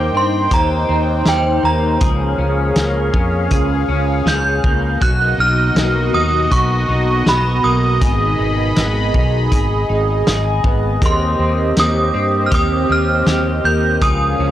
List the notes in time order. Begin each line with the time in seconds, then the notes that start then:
Already playing: A#3 C4 D#4 G4 C5 G5 D6
0.13 G2 C4
0.17 C6
0.51 D#2 G4 A#5, kick, closed hi-hat
0.89 D#2 C4
1.26 D#2 G4 G5, snare, closed hi-hat
1.63 D#2 A#3 A#5
2.01 C#2 F3 C#4 G#4 F5, kick, closed hi-hat
2.38 C#2 C#4
2.76 C#2 A#3, snare, closed hi-hat
3.14 F2 C#4, kick
3.51 C#2 G#4, kick, closed hi-hat
3.88 C#2 C#4
4.26 C#2 G#4 G6, snare, closed hi-hat
4.64 C#2 A#3, kick
5.01 B1 B2 F#3 F#4 D#5 F#6, kick, closed hi-hat
5.38 B1 D#4 F6
5.75 B1 A#3, snare, closed hi-hat
6.13 D#2 D#4 D#6
6.51 B1 F#4 C#6, kick, closed hi-hat
6.89 B1 D#4
7.26 B1 F#4 B5, snare, closed hi-hat
7.63 B1 A#3 D#6
8.01 G#1 D#3 G#4 B5, kick, closed hi-hat
8.39 G#1 D#4
8.76 G#1 B3, snare, closed hi-hat
9.14 B1 D#4, kick
9.52 G#1 G#4, kick, closed hi-hat
9.89 G#1 D#4
10.27 G#1 G#4, snare, closed hi-hat
10.64 G#1 B3, kick
11.02 D#2 A#3 C4 G4 C6, kick, closed hi-hat
11.39 D#2 C4
11.77 D#2 A#3 D#6, snare, closed hi-hat
12.14 G2 C4
12.46 F6
12.51 D#2 G4 D#6, kick, closed hi-hat
12.89 D#2 C4 F6
13.27 D#2 G4, snare, closed hi-hat
13.64 D#2 A#3 G6
14.01 C#2 F3 C#4 G#4 F5 D#6, kick, closed hi-hat
14.39 C#2 C#4